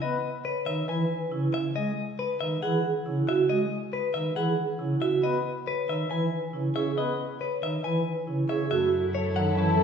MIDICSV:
0, 0, Header, 1, 7, 480
1, 0, Start_track
1, 0, Tempo, 434783
1, 13, Time_signature, 4, 2, 24, 8
1, 10857, End_track
2, 0, Start_track
2, 0, Title_t, "Clean electric guitar"
2, 0, Program_c, 0, 27
2, 19, Note_on_c, 0, 75, 70
2, 327, Note_off_c, 0, 75, 0
2, 496, Note_on_c, 0, 71, 52
2, 733, Note_on_c, 0, 76, 65
2, 806, Note_off_c, 0, 71, 0
2, 979, Note_off_c, 0, 76, 0
2, 983, Note_on_c, 0, 80, 55
2, 1289, Note_off_c, 0, 80, 0
2, 1700, Note_on_c, 0, 76, 56
2, 1939, Note_on_c, 0, 75, 68
2, 2007, Note_off_c, 0, 76, 0
2, 2247, Note_off_c, 0, 75, 0
2, 2418, Note_on_c, 0, 71, 50
2, 2655, Note_on_c, 0, 76, 65
2, 2727, Note_off_c, 0, 71, 0
2, 2894, Note_off_c, 0, 76, 0
2, 2898, Note_on_c, 0, 78, 55
2, 3207, Note_off_c, 0, 78, 0
2, 3628, Note_on_c, 0, 76, 55
2, 3858, Note_on_c, 0, 75, 71
2, 3930, Note_off_c, 0, 76, 0
2, 4167, Note_off_c, 0, 75, 0
2, 4340, Note_on_c, 0, 71, 51
2, 4570, Note_on_c, 0, 76, 62
2, 4648, Note_off_c, 0, 71, 0
2, 4812, Note_off_c, 0, 76, 0
2, 4816, Note_on_c, 0, 78, 52
2, 5126, Note_off_c, 0, 78, 0
2, 5538, Note_on_c, 0, 76, 51
2, 5779, Note_on_c, 0, 75, 64
2, 5847, Note_off_c, 0, 76, 0
2, 6087, Note_off_c, 0, 75, 0
2, 6265, Note_on_c, 0, 71, 51
2, 6507, Note_on_c, 0, 76, 60
2, 6569, Note_off_c, 0, 71, 0
2, 6738, Note_off_c, 0, 76, 0
2, 6743, Note_on_c, 0, 80, 50
2, 7048, Note_off_c, 0, 80, 0
2, 7459, Note_on_c, 0, 76, 50
2, 7698, Note_off_c, 0, 76, 0
2, 7702, Note_on_c, 0, 75, 59
2, 8008, Note_off_c, 0, 75, 0
2, 8179, Note_on_c, 0, 71, 47
2, 8425, Note_on_c, 0, 76, 60
2, 8487, Note_off_c, 0, 71, 0
2, 8654, Note_off_c, 0, 76, 0
2, 8658, Note_on_c, 0, 80, 50
2, 8967, Note_off_c, 0, 80, 0
2, 9377, Note_on_c, 0, 76, 47
2, 9601, Note_off_c, 0, 76, 0
2, 9614, Note_on_c, 0, 76, 69
2, 9925, Note_off_c, 0, 76, 0
2, 10097, Note_on_c, 0, 73, 55
2, 10334, Note_on_c, 0, 78, 73
2, 10406, Note_off_c, 0, 73, 0
2, 10579, Note_off_c, 0, 78, 0
2, 10584, Note_on_c, 0, 81, 59
2, 10857, Note_off_c, 0, 81, 0
2, 10857, End_track
3, 0, Start_track
3, 0, Title_t, "French horn"
3, 0, Program_c, 1, 60
3, 9610, Note_on_c, 1, 69, 60
3, 10857, Note_off_c, 1, 69, 0
3, 10857, End_track
4, 0, Start_track
4, 0, Title_t, "Vibraphone"
4, 0, Program_c, 2, 11
4, 492, Note_on_c, 2, 73, 53
4, 805, Note_off_c, 2, 73, 0
4, 973, Note_on_c, 2, 71, 68
4, 1285, Note_off_c, 2, 71, 0
4, 1453, Note_on_c, 2, 64, 53
4, 1765, Note_off_c, 2, 64, 0
4, 2415, Note_on_c, 2, 71, 52
4, 2726, Note_off_c, 2, 71, 0
4, 2896, Note_on_c, 2, 68, 73
4, 3206, Note_off_c, 2, 68, 0
4, 3376, Note_on_c, 2, 64, 52
4, 3613, Note_on_c, 2, 66, 69
4, 3686, Note_off_c, 2, 64, 0
4, 3925, Note_off_c, 2, 66, 0
4, 4334, Note_on_c, 2, 71, 53
4, 4645, Note_off_c, 2, 71, 0
4, 4815, Note_on_c, 2, 68, 67
4, 5126, Note_off_c, 2, 68, 0
4, 5289, Note_on_c, 2, 64, 50
4, 5530, Note_on_c, 2, 66, 66
4, 5603, Note_off_c, 2, 64, 0
4, 5844, Note_off_c, 2, 66, 0
4, 6255, Note_on_c, 2, 73, 47
4, 6566, Note_off_c, 2, 73, 0
4, 6729, Note_on_c, 2, 71, 64
4, 7043, Note_off_c, 2, 71, 0
4, 7212, Note_on_c, 2, 64, 48
4, 7454, Note_on_c, 2, 68, 59
4, 7525, Note_off_c, 2, 64, 0
4, 7765, Note_off_c, 2, 68, 0
4, 8181, Note_on_c, 2, 73, 49
4, 8488, Note_off_c, 2, 73, 0
4, 8654, Note_on_c, 2, 71, 63
4, 8965, Note_off_c, 2, 71, 0
4, 9132, Note_on_c, 2, 64, 46
4, 9371, Note_on_c, 2, 68, 61
4, 9445, Note_off_c, 2, 64, 0
4, 9614, Note_on_c, 2, 66, 69
4, 9684, Note_off_c, 2, 68, 0
4, 9925, Note_off_c, 2, 66, 0
4, 10332, Note_on_c, 2, 73, 58
4, 10570, Note_on_c, 2, 61, 60
4, 10645, Note_off_c, 2, 73, 0
4, 10810, Note_on_c, 2, 69, 72
4, 10857, Note_off_c, 2, 61, 0
4, 10857, Note_off_c, 2, 69, 0
4, 10857, End_track
5, 0, Start_track
5, 0, Title_t, "String section"
5, 0, Program_c, 3, 48
5, 9612, Note_on_c, 3, 64, 56
5, 9614, Note_on_c, 3, 69, 55
5, 10857, Note_off_c, 3, 64, 0
5, 10857, Note_off_c, 3, 69, 0
5, 10857, End_track
6, 0, Start_track
6, 0, Title_t, "Pipe organ"
6, 0, Program_c, 4, 19
6, 17, Note_on_c, 4, 59, 69
6, 195, Note_off_c, 4, 59, 0
6, 732, Note_on_c, 4, 51, 68
6, 912, Note_off_c, 4, 51, 0
6, 973, Note_on_c, 4, 52, 55
6, 1153, Note_off_c, 4, 52, 0
6, 1446, Note_on_c, 4, 49, 67
6, 1629, Note_off_c, 4, 49, 0
6, 1934, Note_on_c, 4, 56, 66
6, 2114, Note_off_c, 4, 56, 0
6, 2661, Note_on_c, 4, 51, 67
6, 2838, Note_off_c, 4, 51, 0
6, 2901, Note_on_c, 4, 52, 52
6, 3078, Note_off_c, 4, 52, 0
6, 3380, Note_on_c, 4, 49, 63
6, 3557, Note_off_c, 4, 49, 0
6, 3854, Note_on_c, 4, 56, 63
6, 4034, Note_off_c, 4, 56, 0
6, 4577, Note_on_c, 4, 51, 64
6, 4756, Note_off_c, 4, 51, 0
6, 4811, Note_on_c, 4, 52, 53
6, 4992, Note_off_c, 4, 52, 0
6, 5287, Note_on_c, 4, 49, 64
6, 5469, Note_off_c, 4, 49, 0
6, 5772, Note_on_c, 4, 59, 64
6, 5952, Note_off_c, 4, 59, 0
6, 6491, Note_on_c, 4, 51, 66
6, 6671, Note_off_c, 4, 51, 0
6, 6734, Note_on_c, 4, 52, 50
6, 6914, Note_off_c, 4, 52, 0
6, 7210, Note_on_c, 4, 49, 59
6, 7391, Note_off_c, 4, 49, 0
6, 7457, Note_on_c, 4, 61, 48
6, 7635, Note_off_c, 4, 61, 0
6, 7689, Note_on_c, 4, 59, 63
6, 7870, Note_off_c, 4, 59, 0
6, 8409, Note_on_c, 4, 51, 63
6, 8591, Note_off_c, 4, 51, 0
6, 8655, Note_on_c, 4, 52, 49
6, 8834, Note_off_c, 4, 52, 0
6, 9133, Note_on_c, 4, 49, 54
6, 9313, Note_off_c, 4, 49, 0
6, 9372, Note_on_c, 4, 61, 47
6, 9552, Note_off_c, 4, 61, 0
6, 9614, Note_on_c, 4, 57, 66
6, 9794, Note_off_c, 4, 57, 0
6, 10325, Note_on_c, 4, 51, 70
6, 10508, Note_off_c, 4, 51, 0
6, 10570, Note_on_c, 4, 52, 56
6, 10751, Note_off_c, 4, 52, 0
6, 10812, Note_on_c, 4, 51, 62
6, 10857, Note_off_c, 4, 51, 0
6, 10857, End_track
7, 0, Start_track
7, 0, Title_t, "Double bass"
7, 0, Program_c, 5, 43
7, 9615, Note_on_c, 5, 42, 63
7, 10857, Note_off_c, 5, 42, 0
7, 10857, End_track
0, 0, End_of_file